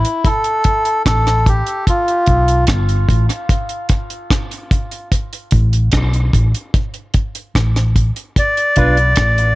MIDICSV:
0, 0, Header, 1, 5, 480
1, 0, Start_track
1, 0, Tempo, 811030
1, 1108, Time_signature, 4, 2, 24, 8
1, 5652, End_track
2, 0, Start_track
2, 0, Title_t, "Melodica"
2, 0, Program_c, 0, 22
2, 0, Note_on_c, 0, 64, 89
2, 153, Note_on_c, 0, 69, 114
2, 167, Note_off_c, 0, 64, 0
2, 607, Note_off_c, 0, 69, 0
2, 634, Note_on_c, 0, 69, 107
2, 877, Note_on_c, 0, 67, 82
2, 878, Note_off_c, 0, 69, 0
2, 1096, Note_off_c, 0, 67, 0
2, 1117, Note_on_c, 0, 65, 84
2, 1569, Note_off_c, 0, 65, 0
2, 4962, Note_on_c, 0, 74, 110
2, 5652, Note_off_c, 0, 74, 0
2, 5652, End_track
3, 0, Start_track
3, 0, Title_t, "Clean electric guitar"
3, 0, Program_c, 1, 27
3, 5187, Note_on_c, 1, 62, 79
3, 5194, Note_on_c, 1, 65, 72
3, 5197, Note_on_c, 1, 71, 85
3, 5302, Note_off_c, 1, 62, 0
3, 5305, Note_off_c, 1, 65, 0
3, 5307, Note_off_c, 1, 71, 0
3, 5652, End_track
4, 0, Start_track
4, 0, Title_t, "Fingered electric bass"
4, 0, Program_c, 2, 33
4, 631, Note_on_c, 2, 33, 83
4, 952, Note_off_c, 2, 33, 0
4, 1351, Note_on_c, 2, 35, 91
4, 1563, Note_off_c, 2, 35, 0
4, 1591, Note_on_c, 2, 31, 89
4, 1803, Note_off_c, 2, 31, 0
4, 1831, Note_on_c, 2, 33, 85
4, 1938, Note_off_c, 2, 33, 0
4, 3272, Note_on_c, 2, 33, 82
4, 3484, Note_off_c, 2, 33, 0
4, 3512, Note_on_c, 2, 35, 90
4, 3724, Note_off_c, 2, 35, 0
4, 3752, Note_on_c, 2, 33, 82
4, 3859, Note_off_c, 2, 33, 0
4, 4474, Note_on_c, 2, 33, 81
4, 4794, Note_off_c, 2, 33, 0
4, 5193, Note_on_c, 2, 35, 92
4, 5404, Note_off_c, 2, 35, 0
4, 5433, Note_on_c, 2, 33, 88
4, 5644, Note_off_c, 2, 33, 0
4, 5652, End_track
5, 0, Start_track
5, 0, Title_t, "Drums"
5, 28, Note_on_c, 9, 42, 61
5, 88, Note_off_c, 9, 42, 0
5, 145, Note_on_c, 9, 36, 115
5, 147, Note_on_c, 9, 42, 78
5, 205, Note_off_c, 9, 36, 0
5, 206, Note_off_c, 9, 42, 0
5, 261, Note_on_c, 9, 42, 46
5, 320, Note_off_c, 9, 42, 0
5, 379, Note_on_c, 9, 42, 74
5, 384, Note_on_c, 9, 36, 87
5, 438, Note_off_c, 9, 42, 0
5, 444, Note_off_c, 9, 36, 0
5, 504, Note_on_c, 9, 42, 49
5, 563, Note_off_c, 9, 42, 0
5, 626, Note_on_c, 9, 36, 99
5, 626, Note_on_c, 9, 42, 72
5, 630, Note_on_c, 9, 37, 111
5, 685, Note_off_c, 9, 36, 0
5, 685, Note_off_c, 9, 42, 0
5, 689, Note_off_c, 9, 37, 0
5, 750, Note_on_c, 9, 42, 48
5, 751, Note_on_c, 9, 37, 63
5, 809, Note_off_c, 9, 42, 0
5, 810, Note_off_c, 9, 37, 0
5, 866, Note_on_c, 9, 36, 92
5, 868, Note_on_c, 9, 42, 67
5, 925, Note_off_c, 9, 36, 0
5, 927, Note_off_c, 9, 42, 0
5, 986, Note_on_c, 9, 42, 49
5, 1045, Note_off_c, 9, 42, 0
5, 1107, Note_on_c, 9, 36, 81
5, 1107, Note_on_c, 9, 42, 81
5, 1166, Note_off_c, 9, 36, 0
5, 1167, Note_off_c, 9, 42, 0
5, 1231, Note_on_c, 9, 42, 45
5, 1290, Note_off_c, 9, 42, 0
5, 1340, Note_on_c, 9, 42, 63
5, 1347, Note_on_c, 9, 36, 82
5, 1399, Note_off_c, 9, 42, 0
5, 1406, Note_off_c, 9, 36, 0
5, 1468, Note_on_c, 9, 42, 52
5, 1527, Note_off_c, 9, 42, 0
5, 1580, Note_on_c, 9, 42, 83
5, 1587, Note_on_c, 9, 36, 108
5, 1589, Note_on_c, 9, 37, 105
5, 1639, Note_off_c, 9, 42, 0
5, 1646, Note_off_c, 9, 36, 0
5, 1648, Note_off_c, 9, 37, 0
5, 1709, Note_on_c, 9, 42, 46
5, 1768, Note_off_c, 9, 42, 0
5, 1827, Note_on_c, 9, 36, 90
5, 1834, Note_on_c, 9, 42, 70
5, 1886, Note_off_c, 9, 36, 0
5, 1893, Note_off_c, 9, 42, 0
5, 1951, Note_on_c, 9, 42, 60
5, 2010, Note_off_c, 9, 42, 0
5, 2067, Note_on_c, 9, 36, 106
5, 2070, Note_on_c, 9, 42, 75
5, 2126, Note_off_c, 9, 36, 0
5, 2129, Note_off_c, 9, 42, 0
5, 2185, Note_on_c, 9, 42, 49
5, 2244, Note_off_c, 9, 42, 0
5, 2301, Note_on_c, 9, 42, 76
5, 2306, Note_on_c, 9, 36, 78
5, 2361, Note_off_c, 9, 42, 0
5, 2365, Note_off_c, 9, 36, 0
5, 2427, Note_on_c, 9, 42, 46
5, 2486, Note_off_c, 9, 42, 0
5, 2548, Note_on_c, 9, 36, 109
5, 2548, Note_on_c, 9, 42, 79
5, 2552, Note_on_c, 9, 37, 102
5, 2607, Note_off_c, 9, 36, 0
5, 2607, Note_off_c, 9, 42, 0
5, 2611, Note_off_c, 9, 37, 0
5, 2671, Note_on_c, 9, 42, 50
5, 2731, Note_off_c, 9, 42, 0
5, 2788, Note_on_c, 9, 36, 92
5, 2789, Note_on_c, 9, 42, 63
5, 2847, Note_off_c, 9, 36, 0
5, 2848, Note_off_c, 9, 42, 0
5, 2909, Note_on_c, 9, 42, 48
5, 2968, Note_off_c, 9, 42, 0
5, 3028, Note_on_c, 9, 36, 81
5, 3029, Note_on_c, 9, 42, 86
5, 3087, Note_off_c, 9, 36, 0
5, 3088, Note_off_c, 9, 42, 0
5, 3153, Note_on_c, 9, 42, 52
5, 3212, Note_off_c, 9, 42, 0
5, 3261, Note_on_c, 9, 42, 61
5, 3268, Note_on_c, 9, 36, 82
5, 3320, Note_off_c, 9, 42, 0
5, 3328, Note_off_c, 9, 36, 0
5, 3391, Note_on_c, 9, 42, 46
5, 3450, Note_off_c, 9, 42, 0
5, 3501, Note_on_c, 9, 42, 77
5, 3509, Note_on_c, 9, 36, 103
5, 3510, Note_on_c, 9, 37, 102
5, 3560, Note_off_c, 9, 42, 0
5, 3568, Note_off_c, 9, 36, 0
5, 3569, Note_off_c, 9, 37, 0
5, 3631, Note_on_c, 9, 42, 48
5, 3690, Note_off_c, 9, 42, 0
5, 3749, Note_on_c, 9, 36, 82
5, 3754, Note_on_c, 9, 42, 64
5, 3808, Note_off_c, 9, 36, 0
5, 3814, Note_off_c, 9, 42, 0
5, 3874, Note_on_c, 9, 42, 60
5, 3933, Note_off_c, 9, 42, 0
5, 3989, Note_on_c, 9, 36, 110
5, 3991, Note_on_c, 9, 42, 71
5, 4048, Note_off_c, 9, 36, 0
5, 4051, Note_off_c, 9, 42, 0
5, 4106, Note_on_c, 9, 42, 46
5, 4165, Note_off_c, 9, 42, 0
5, 4224, Note_on_c, 9, 42, 71
5, 4228, Note_on_c, 9, 36, 85
5, 4283, Note_off_c, 9, 42, 0
5, 4287, Note_off_c, 9, 36, 0
5, 4350, Note_on_c, 9, 42, 49
5, 4409, Note_off_c, 9, 42, 0
5, 4469, Note_on_c, 9, 36, 109
5, 4470, Note_on_c, 9, 42, 84
5, 4474, Note_on_c, 9, 37, 114
5, 4529, Note_off_c, 9, 36, 0
5, 4529, Note_off_c, 9, 42, 0
5, 4533, Note_off_c, 9, 37, 0
5, 4593, Note_on_c, 9, 42, 46
5, 4594, Note_on_c, 9, 37, 65
5, 4652, Note_off_c, 9, 42, 0
5, 4653, Note_off_c, 9, 37, 0
5, 4709, Note_on_c, 9, 36, 78
5, 4710, Note_on_c, 9, 42, 63
5, 4768, Note_off_c, 9, 36, 0
5, 4769, Note_off_c, 9, 42, 0
5, 4830, Note_on_c, 9, 42, 51
5, 4889, Note_off_c, 9, 42, 0
5, 4949, Note_on_c, 9, 36, 78
5, 4950, Note_on_c, 9, 42, 74
5, 5008, Note_off_c, 9, 36, 0
5, 5009, Note_off_c, 9, 42, 0
5, 5073, Note_on_c, 9, 42, 50
5, 5133, Note_off_c, 9, 42, 0
5, 5183, Note_on_c, 9, 42, 65
5, 5190, Note_on_c, 9, 36, 74
5, 5242, Note_off_c, 9, 42, 0
5, 5249, Note_off_c, 9, 36, 0
5, 5310, Note_on_c, 9, 42, 51
5, 5369, Note_off_c, 9, 42, 0
5, 5419, Note_on_c, 9, 42, 78
5, 5428, Note_on_c, 9, 36, 109
5, 5428, Note_on_c, 9, 37, 114
5, 5478, Note_off_c, 9, 42, 0
5, 5487, Note_off_c, 9, 36, 0
5, 5487, Note_off_c, 9, 37, 0
5, 5551, Note_on_c, 9, 42, 48
5, 5610, Note_off_c, 9, 42, 0
5, 5652, End_track
0, 0, End_of_file